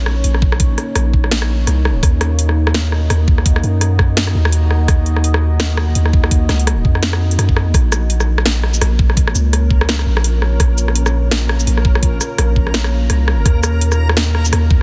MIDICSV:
0, 0, Header, 1, 5, 480
1, 0, Start_track
1, 0, Key_signature, -5, "minor"
1, 0, Tempo, 357143
1, 806, Time_signature, 4, 2, 24, 8
1, 19923, End_track
2, 0, Start_track
2, 0, Title_t, "Synth texture"
2, 0, Program_c, 0, 99
2, 10405, Note_on_c, 0, 70, 90
2, 19923, Note_off_c, 0, 70, 0
2, 19923, End_track
3, 0, Start_track
3, 0, Title_t, "Ambient pad"
3, 0, Program_c, 1, 92
3, 0, Note_on_c, 1, 58, 79
3, 0, Note_on_c, 1, 61, 72
3, 0, Note_on_c, 1, 63, 71
3, 0, Note_on_c, 1, 73, 84
3, 2670, Note_off_c, 1, 61, 0
3, 2671, Note_off_c, 1, 73, 0
3, 2720, Note_on_c, 1, 75, 85
3, 2723, Note_on_c, 1, 66, 69
3, 10349, Note_off_c, 1, 58, 0
3, 10349, Note_off_c, 1, 75, 0
3, 10351, Note_off_c, 1, 63, 0
3, 10351, Note_off_c, 1, 66, 0
3, 10401, Note_on_c, 1, 65, 73
3, 10402, Note_on_c, 1, 61, 72
3, 10402, Note_on_c, 1, 73, 87
3, 10404, Note_on_c, 1, 58, 76
3, 18030, Note_off_c, 1, 61, 0
3, 18030, Note_off_c, 1, 65, 0
3, 18030, Note_off_c, 1, 73, 0
3, 18081, Note_on_c, 1, 66, 68
3, 18082, Note_on_c, 1, 63, 67
3, 18083, Note_on_c, 1, 75, 82
3, 19923, Note_off_c, 1, 58, 0
3, 19923, Note_off_c, 1, 63, 0
3, 19923, Note_off_c, 1, 66, 0
3, 19923, Note_off_c, 1, 75, 0
3, 19923, End_track
4, 0, Start_track
4, 0, Title_t, "808-style bass"
4, 0, Program_c, 2, 38
4, 0, Note_on_c, 2, 34, 96
4, 310, Note_off_c, 2, 34, 0
4, 325, Note_on_c, 2, 34, 92
4, 1029, Note_off_c, 2, 34, 0
4, 1287, Note_on_c, 2, 34, 95
4, 2230, Note_off_c, 2, 34, 0
4, 2245, Note_on_c, 2, 36, 91
4, 2710, Note_off_c, 2, 36, 0
4, 2728, Note_on_c, 2, 39, 93
4, 4151, Note_off_c, 2, 39, 0
4, 4167, Note_on_c, 2, 39, 92
4, 4870, Note_off_c, 2, 39, 0
4, 4886, Note_on_c, 2, 42, 98
4, 5830, Note_off_c, 2, 42, 0
4, 5845, Note_on_c, 2, 39, 97
4, 6549, Note_off_c, 2, 39, 0
4, 6565, Note_on_c, 2, 39, 96
4, 7989, Note_off_c, 2, 39, 0
4, 8005, Note_on_c, 2, 39, 97
4, 8709, Note_off_c, 2, 39, 0
4, 8724, Note_on_c, 2, 37, 100
4, 9189, Note_off_c, 2, 37, 0
4, 9206, Note_on_c, 2, 41, 96
4, 9910, Note_off_c, 2, 41, 0
4, 9923, Note_on_c, 2, 42, 93
4, 10388, Note_off_c, 2, 42, 0
4, 10405, Note_on_c, 2, 34, 95
4, 11829, Note_off_c, 2, 34, 0
4, 11845, Note_on_c, 2, 34, 96
4, 12549, Note_off_c, 2, 34, 0
4, 12567, Note_on_c, 2, 37, 101
4, 13511, Note_off_c, 2, 37, 0
4, 13526, Note_on_c, 2, 34, 95
4, 14230, Note_off_c, 2, 34, 0
4, 14245, Note_on_c, 2, 34, 97
4, 15669, Note_off_c, 2, 34, 0
4, 15686, Note_on_c, 2, 34, 95
4, 16390, Note_off_c, 2, 34, 0
4, 16647, Note_on_c, 2, 34, 101
4, 17591, Note_off_c, 2, 34, 0
4, 17606, Note_on_c, 2, 36, 92
4, 18070, Note_off_c, 2, 36, 0
4, 18084, Note_on_c, 2, 39, 97
4, 19509, Note_off_c, 2, 39, 0
4, 19523, Note_on_c, 2, 39, 91
4, 19923, Note_off_c, 2, 39, 0
4, 19923, End_track
5, 0, Start_track
5, 0, Title_t, "Drums"
5, 83, Note_on_c, 9, 37, 75
5, 218, Note_off_c, 9, 37, 0
5, 323, Note_on_c, 9, 42, 62
5, 457, Note_off_c, 9, 42, 0
5, 464, Note_on_c, 9, 37, 50
5, 565, Note_on_c, 9, 36, 109
5, 598, Note_off_c, 9, 37, 0
5, 700, Note_off_c, 9, 36, 0
5, 703, Note_on_c, 9, 37, 75
5, 803, Note_on_c, 9, 42, 79
5, 805, Note_on_c, 9, 36, 112
5, 837, Note_off_c, 9, 37, 0
5, 938, Note_off_c, 9, 42, 0
5, 939, Note_off_c, 9, 36, 0
5, 1046, Note_on_c, 9, 37, 47
5, 1046, Note_on_c, 9, 42, 33
5, 1181, Note_off_c, 9, 37, 0
5, 1181, Note_off_c, 9, 42, 0
5, 1284, Note_on_c, 9, 37, 72
5, 1284, Note_on_c, 9, 42, 65
5, 1418, Note_off_c, 9, 37, 0
5, 1418, Note_off_c, 9, 42, 0
5, 1526, Note_on_c, 9, 36, 59
5, 1660, Note_off_c, 9, 36, 0
5, 1666, Note_on_c, 9, 37, 47
5, 1767, Note_on_c, 9, 38, 119
5, 1767, Note_on_c, 9, 42, 73
5, 1800, Note_off_c, 9, 37, 0
5, 1901, Note_off_c, 9, 38, 0
5, 1901, Note_off_c, 9, 42, 0
5, 1907, Note_on_c, 9, 37, 74
5, 2042, Note_off_c, 9, 37, 0
5, 2248, Note_on_c, 9, 37, 45
5, 2248, Note_on_c, 9, 42, 58
5, 2382, Note_off_c, 9, 37, 0
5, 2382, Note_off_c, 9, 42, 0
5, 2490, Note_on_c, 9, 37, 69
5, 2624, Note_off_c, 9, 37, 0
5, 2726, Note_on_c, 9, 36, 109
5, 2731, Note_on_c, 9, 37, 50
5, 2731, Note_on_c, 9, 42, 76
5, 2861, Note_off_c, 9, 36, 0
5, 2865, Note_off_c, 9, 37, 0
5, 2865, Note_off_c, 9, 42, 0
5, 2969, Note_on_c, 9, 37, 73
5, 2969, Note_on_c, 9, 42, 32
5, 3103, Note_off_c, 9, 37, 0
5, 3103, Note_off_c, 9, 42, 0
5, 3208, Note_on_c, 9, 42, 61
5, 3343, Note_off_c, 9, 42, 0
5, 3347, Note_on_c, 9, 37, 47
5, 3481, Note_off_c, 9, 37, 0
5, 3588, Note_on_c, 9, 37, 74
5, 3688, Note_on_c, 9, 38, 114
5, 3688, Note_on_c, 9, 42, 72
5, 3722, Note_off_c, 9, 37, 0
5, 3823, Note_off_c, 9, 38, 0
5, 3823, Note_off_c, 9, 42, 0
5, 3928, Note_on_c, 9, 37, 48
5, 4063, Note_off_c, 9, 37, 0
5, 4168, Note_on_c, 9, 37, 70
5, 4168, Note_on_c, 9, 42, 57
5, 4303, Note_off_c, 9, 37, 0
5, 4303, Note_off_c, 9, 42, 0
5, 4405, Note_on_c, 9, 36, 99
5, 4540, Note_off_c, 9, 36, 0
5, 4545, Note_on_c, 9, 37, 49
5, 4646, Note_on_c, 9, 36, 106
5, 4646, Note_on_c, 9, 42, 76
5, 4679, Note_off_c, 9, 37, 0
5, 4780, Note_off_c, 9, 36, 0
5, 4781, Note_off_c, 9, 42, 0
5, 4786, Note_on_c, 9, 37, 67
5, 4886, Note_on_c, 9, 42, 33
5, 4920, Note_off_c, 9, 37, 0
5, 5020, Note_off_c, 9, 42, 0
5, 5123, Note_on_c, 9, 37, 49
5, 5123, Note_on_c, 9, 42, 63
5, 5258, Note_off_c, 9, 37, 0
5, 5258, Note_off_c, 9, 42, 0
5, 5363, Note_on_c, 9, 37, 71
5, 5365, Note_on_c, 9, 36, 60
5, 5497, Note_off_c, 9, 37, 0
5, 5499, Note_off_c, 9, 36, 0
5, 5604, Note_on_c, 9, 38, 116
5, 5604, Note_on_c, 9, 42, 73
5, 5738, Note_off_c, 9, 38, 0
5, 5738, Note_off_c, 9, 42, 0
5, 5744, Note_on_c, 9, 37, 50
5, 5878, Note_off_c, 9, 37, 0
5, 5984, Note_on_c, 9, 37, 77
5, 6081, Note_on_c, 9, 42, 61
5, 6118, Note_off_c, 9, 37, 0
5, 6216, Note_off_c, 9, 42, 0
5, 6324, Note_on_c, 9, 37, 49
5, 6459, Note_off_c, 9, 37, 0
5, 6563, Note_on_c, 9, 37, 81
5, 6563, Note_on_c, 9, 42, 75
5, 6564, Note_on_c, 9, 36, 99
5, 6697, Note_off_c, 9, 37, 0
5, 6697, Note_off_c, 9, 42, 0
5, 6698, Note_off_c, 9, 36, 0
5, 6802, Note_on_c, 9, 42, 33
5, 6937, Note_off_c, 9, 42, 0
5, 6942, Note_on_c, 9, 37, 49
5, 7043, Note_on_c, 9, 42, 61
5, 7076, Note_off_c, 9, 37, 0
5, 7177, Note_off_c, 9, 42, 0
5, 7180, Note_on_c, 9, 37, 76
5, 7314, Note_off_c, 9, 37, 0
5, 7523, Note_on_c, 9, 37, 53
5, 7523, Note_on_c, 9, 38, 114
5, 7523, Note_on_c, 9, 42, 77
5, 7657, Note_off_c, 9, 37, 0
5, 7657, Note_off_c, 9, 38, 0
5, 7657, Note_off_c, 9, 42, 0
5, 7761, Note_on_c, 9, 37, 77
5, 7895, Note_off_c, 9, 37, 0
5, 8001, Note_on_c, 9, 42, 60
5, 8135, Note_off_c, 9, 42, 0
5, 8138, Note_on_c, 9, 37, 52
5, 8244, Note_on_c, 9, 36, 97
5, 8273, Note_off_c, 9, 37, 0
5, 8378, Note_off_c, 9, 36, 0
5, 8382, Note_on_c, 9, 37, 80
5, 8484, Note_on_c, 9, 36, 103
5, 8484, Note_on_c, 9, 42, 79
5, 8516, Note_off_c, 9, 37, 0
5, 8618, Note_off_c, 9, 36, 0
5, 8618, Note_off_c, 9, 42, 0
5, 8724, Note_on_c, 9, 37, 52
5, 8724, Note_on_c, 9, 38, 34
5, 8724, Note_on_c, 9, 42, 36
5, 8858, Note_off_c, 9, 37, 0
5, 8858, Note_off_c, 9, 38, 0
5, 8858, Note_off_c, 9, 42, 0
5, 8864, Note_on_c, 9, 42, 34
5, 8966, Note_off_c, 9, 42, 0
5, 8966, Note_on_c, 9, 37, 79
5, 8966, Note_on_c, 9, 42, 67
5, 9101, Note_off_c, 9, 37, 0
5, 9101, Note_off_c, 9, 42, 0
5, 9204, Note_on_c, 9, 36, 57
5, 9339, Note_off_c, 9, 36, 0
5, 9343, Note_on_c, 9, 37, 53
5, 9443, Note_on_c, 9, 38, 112
5, 9443, Note_on_c, 9, 42, 83
5, 9478, Note_off_c, 9, 37, 0
5, 9577, Note_off_c, 9, 38, 0
5, 9577, Note_off_c, 9, 42, 0
5, 9585, Note_on_c, 9, 37, 81
5, 9719, Note_off_c, 9, 37, 0
5, 9828, Note_on_c, 9, 42, 38
5, 9930, Note_off_c, 9, 42, 0
5, 9930, Note_on_c, 9, 37, 53
5, 9930, Note_on_c, 9, 42, 66
5, 10064, Note_off_c, 9, 37, 0
5, 10064, Note_off_c, 9, 42, 0
5, 10064, Note_on_c, 9, 36, 56
5, 10167, Note_on_c, 9, 37, 80
5, 10198, Note_off_c, 9, 36, 0
5, 10302, Note_off_c, 9, 37, 0
5, 10404, Note_on_c, 9, 36, 116
5, 10410, Note_on_c, 9, 37, 54
5, 10410, Note_on_c, 9, 42, 82
5, 10539, Note_off_c, 9, 36, 0
5, 10544, Note_off_c, 9, 37, 0
5, 10544, Note_off_c, 9, 42, 0
5, 10647, Note_on_c, 9, 37, 81
5, 10647, Note_on_c, 9, 42, 38
5, 10647, Note_on_c, 9, 82, 61
5, 10781, Note_off_c, 9, 37, 0
5, 10781, Note_off_c, 9, 42, 0
5, 10781, Note_off_c, 9, 82, 0
5, 10884, Note_on_c, 9, 42, 65
5, 11019, Note_off_c, 9, 42, 0
5, 11025, Note_on_c, 9, 37, 53
5, 11025, Note_on_c, 9, 82, 36
5, 11160, Note_off_c, 9, 37, 0
5, 11160, Note_off_c, 9, 82, 0
5, 11264, Note_on_c, 9, 37, 76
5, 11365, Note_on_c, 9, 38, 119
5, 11365, Note_on_c, 9, 42, 79
5, 11399, Note_off_c, 9, 37, 0
5, 11499, Note_off_c, 9, 38, 0
5, 11499, Note_off_c, 9, 42, 0
5, 11605, Note_on_c, 9, 37, 53
5, 11739, Note_off_c, 9, 37, 0
5, 11745, Note_on_c, 9, 82, 65
5, 11847, Note_on_c, 9, 37, 81
5, 11847, Note_on_c, 9, 42, 67
5, 11880, Note_off_c, 9, 82, 0
5, 11981, Note_off_c, 9, 37, 0
5, 11981, Note_off_c, 9, 42, 0
5, 12084, Note_on_c, 9, 36, 103
5, 12218, Note_off_c, 9, 36, 0
5, 12225, Note_on_c, 9, 37, 54
5, 12324, Note_on_c, 9, 36, 121
5, 12326, Note_on_c, 9, 42, 81
5, 12360, Note_off_c, 9, 37, 0
5, 12458, Note_off_c, 9, 36, 0
5, 12460, Note_off_c, 9, 42, 0
5, 12465, Note_on_c, 9, 37, 76
5, 12570, Note_on_c, 9, 42, 36
5, 12570, Note_on_c, 9, 82, 58
5, 12600, Note_off_c, 9, 37, 0
5, 12704, Note_off_c, 9, 42, 0
5, 12704, Note_off_c, 9, 82, 0
5, 12810, Note_on_c, 9, 37, 50
5, 12810, Note_on_c, 9, 42, 67
5, 12944, Note_off_c, 9, 37, 0
5, 12944, Note_off_c, 9, 42, 0
5, 13044, Note_on_c, 9, 36, 62
5, 13178, Note_off_c, 9, 36, 0
5, 13188, Note_on_c, 9, 37, 77
5, 13289, Note_on_c, 9, 38, 126
5, 13289, Note_on_c, 9, 42, 85
5, 13323, Note_off_c, 9, 37, 0
5, 13424, Note_off_c, 9, 38, 0
5, 13424, Note_off_c, 9, 42, 0
5, 13429, Note_on_c, 9, 37, 51
5, 13563, Note_off_c, 9, 37, 0
5, 13666, Note_on_c, 9, 37, 78
5, 13767, Note_on_c, 9, 42, 69
5, 13800, Note_off_c, 9, 37, 0
5, 13902, Note_off_c, 9, 42, 0
5, 14005, Note_on_c, 9, 37, 52
5, 14139, Note_off_c, 9, 37, 0
5, 14244, Note_on_c, 9, 36, 117
5, 14246, Note_on_c, 9, 37, 80
5, 14246, Note_on_c, 9, 42, 83
5, 14379, Note_off_c, 9, 36, 0
5, 14381, Note_off_c, 9, 37, 0
5, 14381, Note_off_c, 9, 42, 0
5, 14486, Note_on_c, 9, 42, 37
5, 14486, Note_on_c, 9, 82, 63
5, 14620, Note_off_c, 9, 42, 0
5, 14620, Note_off_c, 9, 82, 0
5, 14625, Note_on_c, 9, 37, 48
5, 14724, Note_on_c, 9, 42, 66
5, 14760, Note_off_c, 9, 37, 0
5, 14858, Note_off_c, 9, 42, 0
5, 14866, Note_on_c, 9, 37, 75
5, 14866, Note_on_c, 9, 82, 33
5, 15000, Note_off_c, 9, 37, 0
5, 15000, Note_off_c, 9, 82, 0
5, 15207, Note_on_c, 9, 37, 49
5, 15207, Note_on_c, 9, 38, 122
5, 15207, Note_on_c, 9, 42, 82
5, 15341, Note_off_c, 9, 37, 0
5, 15341, Note_off_c, 9, 38, 0
5, 15341, Note_off_c, 9, 42, 0
5, 15447, Note_on_c, 9, 37, 73
5, 15582, Note_off_c, 9, 37, 0
5, 15586, Note_on_c, 9, 82, 61
5, 15686, Note_on_c, 9, 42, 66
5, 15721, Note_off_c, 9, 82, 0
5, 15821, Note_off_c, 9, 42, 0
5, 15825, Note_on_c, 9, 37, 52
5, 15924, Note_on_c, 9, 36, 108
5, 15960, Note_off_c, 9, 37, 0
5, 16059, Note_off_c, 9, 36, 0
5, 16065, Note_on_c, 9, 37, 75
5, 16164, Note_on_c, 9, 36, 114
5, 16165, Note_on_c, 9, 42, 77
5, 16200, Note_off_c, 9, 37, 0
5, 16298, Note_off_c, 9, 36, 0
5, 16299, Note_off_c, 9, 42, 0
5, 16408, Note_on_c, 9, 37, 47
5, 16408, Note_on_c, 9, 42, 35
5, 16408, Note_on_c, 9, 82, 61
5, 16542, Note_off_c, 9, 37, 0
5, 16542, Note_off_c, 9, 42, 0
5, 16542, Note_off_c, 9, 82, 0
5, 16644, Note_on_c, 9, 37, 71
5, 16644, Note_on_c, 9, 42, 64
5, 16779, Note_off_c, 9, 37, 0
5, 16779, Note_off_c, 9, 42, 0
5, 16884, Note_on_c, 9, 36, 59
5, 17018, Note_off_c, 9, 36, 0
5, 17024, Note_on_c, 9, 37, 47
5, 17124, Note_on_c, 9, 38, 118
5, 17124, Note_on_c, 9, 42, 81
5, 17159, Note_off_c, 9, 37, 0
5, 17258, Note_off_c, 9, 38, 0
5, 17258, Note_off_c, 9, 42, 0
5, 17262, Note_on_c, 9, 37, 75
5, 17396, Note_off_c, 9, 37, 0
5, 17603, Note_on_c, 9, 37, 48
5, 17603, Note_on_c, 9, 42, 60
5, 17737, Note_off_c, 9, 37, 0
5, 17737, Note_off_c, 9, 42, 0
5, 17845, Note_on_c, 9, 37, 67
5, 17980, Note_off_c, 9, 37, 0
5, 18084, Note_on_c, 9, 36, 109
5, 18086, Note_on_c, 9, 37, 51
5, 18086, Note_on_c, 9, 42, 72
5, 18218, Note_off_c, 9, 36, 0
5, 18220, Note_off_c, 9, 37, 0
5, 18220, Note_off_c, 9, 42, 0
5, 18325, Note_on_c, 9, 37, 73
5, 18325, Note_on_c, 9, 42, 34
5, 18325, Note_on_c, 9, 82, 63
5, 18459, Note_off_c, 9, 37, 0
5, 18459, Note_off_c, 9, 42, 0
5, 18459, Note_off_c, 9, 82, 0
5, 18566, Note_on_c, 9, 42, 61
5, 18701, Note_off_c, 9, 42, 0
5, 18705, Note_on_c, 9, 37, 50
5, 18705, Note_on_c, 9, 82, 35
5, 18839, Note_off_c, 9, 37, 0
5, 18839, Note_off_c, 9, 82, 0
5, 18943, Note_on_c, 9, 37, 75
5, 19042, Note_on_c, 9, 38, 114
5, 19042, Note_on_c, 9, 42, 77
5, 19077, Note_off_c, 9, 37, 0
5, 19176, Note_off_c, 9, 38, 0
5, 19176, Note_off_c, 9, 42, 0
5, 19282, Note_on_c, 9, 37, 48
5, 19417, Note_off_c, 9, 37, 0
5, 19422, Note_on_c, 9, 82, 64
5, 19524, Note_on_c, 9, 37, 73
5, 19524, Note_on_c, 9, 42, 58
5, 19556, Note_off_c, 9, 82, 0
5, 19659, Note_off_c, 9, 37, 0
5, 19659, Note_off_c, 9, 42, 0
5, 19764, Note_on_c, 9, 36, 101
5, 19898, Note_off_c, 9, 36, 0
5, 19923, End_track
0, 0, End_of_file